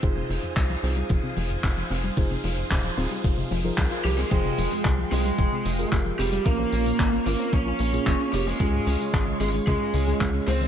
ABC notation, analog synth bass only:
X:1
M:4/4
L:1/8
Q:1/4=112
K:Fm
V:1 name="Analog synth bass" clef=bass
F,,, F,,, C,, C,, F,,, F,,, F,,, F,,, | F,,, F,,, E,,, E,,, F,,, F,,, C,, C,, | F,,, F,,, C,, C,, F,,, F,,, F,,, F,,, | B,,, B,,, A,,, A,,, B,,, B,,, F,,, F,,, |
D,, D,, A,,, A,,, D,, D,, D,, D,, |]